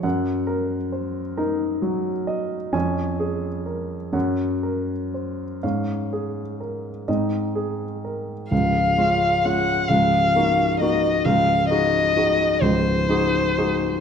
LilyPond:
<<
  \new Staff \with { instrumentName = "Violin" } { \time 6/8 \key des \major \tempo 4. = 43 r2. | r2. | r2. | f''4 ges''8 f''4 ees''8 |
f''8 ees''4 c''4. | }
  \new Staff \with { instrumentName = "Grand piano" } { \time 6/8 \key des \major << { ges''8 bes'8 c''8 bes'8 ges8 ees''8 | aes''8 aes'8 bes'8 ges''8 bes'8 c''8 | f''8 aes'8 bes'8 ees''8 aes'8 bes'8 | r2. |
r2. | } \\ { ges,4. ees'4. | <f, des'>4. <ges, des'>4. | <aes, des'>4. <aes, c' ees'>4. | <des,, des,>8 <aes des' f'>8 <aes des' f'>8 <des,, des,>8 <bes ees' ges'>8 <bes ees' ges'>8 |
<des,, des,>8 <ees' ges' aes'>8 <ees' ges' aes'>8 <des,, des,>8 <ees' ges' aes'>8 <ees' ges' aes'>8 | } >> }
>>